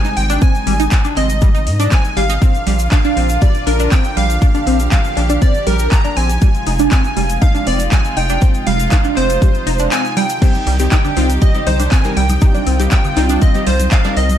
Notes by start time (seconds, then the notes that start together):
Already playing: C3 G3 G#3 D#4 G#5
0.05 D#4, closed hi-hat, shaker
0.17 G#1 G5, open hi-hat
0.30 D4, closed hi-hat, shaker
0.42 C4 G#5, kick, closed hi-hat, shaker
0.55 closed hi-hat, shaker
0.67 G#1 G3, open hi-hat
0.80 D#4, closed hi-hat, shaker
0.91 kick, clap, closed hi-hat, shaker
1.05 D4, closed hi-hat, shaker
1.17 G#1 C4 D#5, clap, open hi-hat
1.29 closed hi-hat, shaker
1.41 G3, kick, closed hi-hat, shaker
1.55 D#4, closed hi-hat, shaker
1.67 G#2, open hi-hat
1.80 D4, closed hi-hat, shaker
1.92 C4 G#5, kick, clap, closed hi-hat, shaker
2.04 closed hi-hat, shaker
2.17 G#1 G3 F5, open hi-hat
2.30 D#4, closed hi-hat, shaker
2.42 A#2 D3 F3 C4 D4 F4, kick, closed hi-hat, shaker
2.55 closed hi-hat, shaker
2.67 A#1 G3, open hi-hat
2.79 closed hi-hat, shaker
2.92 D4 F5, kick, clap, closed hi-hat, shaker
3.04 D4, closed hi-hat, shaker
3.17 A#1 C4, open hi-hat
3.29 closed hi-hat, shaker
3.42 G3 D5, kick, closed hi-hat, shaker
3.55 closed hi-hat, shaker
3.67 A#1 D4 A#4, open hi-hat
3.80 D4, closed hi-hat, shaker
3.92 C4 G5, kick, clap, closed hi-hat, shaker
4.04 closed hi-hat, shaker
4.17 A#1 G3 F5, open hi-hat
4.30 closed hi-hat, shaker
4.42 D4 G4, kick, closed hi-hat, shaker
4.55 D4, closed hi-hat, shaker
4.67 A#1 C4, open hi-hat
4.80 closed hi-hat, shaker
4.92 G3 F5, kick, clap, closed hi-hat, shaker
5.05 closed hi-hat, shaker
5.17 A#1 D4, clap, open hi-hat
5.30 D4, closed hi-hat, shaker
5.42 C4 D5, kick, closed hi-hat, shaker
5.54 closed hi-hat, shaker
5.67 A#1 G3 A#4, open hi-hat
5.79 closed hi-hat, shaker
5.92 D4 A#5, kick, clap, closed hi-hat, shaker
6.05 D4, closed hi-hat, shaker
6.17 A#1 C4 G#5, open hi-hat
6.30 closed hi-hat, shaker
6.42 C3 G3 G#3 D#4 F4, kick, closed hi-hat, shaker
6.55 closed hi-hat, shaker
6.67 F1 D#4, open hi-hat
6.79 D4, closed hi-hat, shaker
6.91 C4 G#5, kick, clap, closed hi-hat, shaker
7.04 closed hi-hat, shaker
7.17 F1 G3, open hi-hat
7.30 closed hi-hat, shaker
7.42 D#4 F5, kick, closed hi-hat, shaker
7.55 D4, closed hi-hat, shaker
7.66 F1 C4 D5, open hi-hat
7.79 closed hi-hat, shaker
7.92 G3 G#5, kick, clap, closed hi-hat, shaker
8.05 closed hi-hat, shaker
8.17 F1 D#4 G5, open hi-hat
8.29 D4, closed hi-hat, shaker
8.41 C4, kick, closed hi-hat, shaker
8.54 closed hi-hat, shaker
8.67 F1 G3 F5, open hi-hat
8.80 closed hi-hat, shaker
8.91 D#4, kick, clap, closed hi-hat, shaker
9.04 D4, closed hi-hat, shaker
9.17 F1 C4 C5, clap, open hi-hat
9.30 closed hi-hat, shaker
9.42 G3, kick, closed hi-hat, shaker
9.55 closed hi-hat, shaker
9.67 F1 D#4, open hi-hat
9.79 D4, closed hi-hat, shaker
9.92 C4 G#5, clap, closed hi-hat, shaker
10.05 closed hi-hat, shaker
10.17 G3 G5, open hi-hat
10.29 closed hi-hat, shaker
10.42 C3 D#3 G3 C4 D#4 G4, kick, closed hi-hat, crash, shaker
10.55 closed hi-hat, high conga, shaker
10.67 C2 G3, open hi-hat
10.79 G3 C4 D#4 G4, closed hi-hat, shaker
10.92 D#4 G5, kick, clap, closed hi-hat, shaker
11.05 D4, closed hi-hat, low conga, shaker
11.17 C2 G3 C4 D#4 F4, open hi-hat
11.30 closed hi-hat, shaker
11.42 G3 D#5, kick, closed hi-hat, shaker
11.54 G3 C4 D#4 G4, closed hi-hat, high woodblock, shaker
11.67 C2 D#4 C5, open hi-hat, high conga, low conga
11.80 D4, closed hi-hat, high conga, shaker
11.91 C4 G#5, kick, clap, closed hi-hat, shaker
12.04 G3 C4 D#4 A#4, closed hi-hat, shaker
12.17 C2 G3 G5, open hi-hat
12.29 closed hi-hat, high conga, high woodblock, shaker
12.41 G3 C4 D#4 F4 G4, kick, closed hi-hat, shaker
12.54 D4, closed hi-hat, high conga, shaker
12.67 C2 C4, open hi-hat
12.80 G3 C4 D#4 G4, closed hi-hat, shaker
12.91 G3 G5, kick, clap, closed hi-hat, shaker
13.04 closed hi-hat, low conga, high woodblock, shaker
13.16 C2 G3 C4 D#4 F4, clap, open hi-hat
13.29 D4, closed hi-hat, high woodblock, shaker
13.42 C4 D#5, kick, closed hi-hat, shaker
13.54 G3 C4 D#4 G4, closed hi-hat, shaker
13.67 C2 G3 C5, open hi-hat, high conga
13.80 closed hi-hat, high conga, shaker
13.91 D#4 F5, kick, clap, closed hi-hat, shaker
14.04 G3 C4 D4 D#4 A#4, closed hi-hat, high woodblock, shaker
14.17 C2 C4 D#5, open hi-hat
14.29 closed hi-hat, high conga, shaker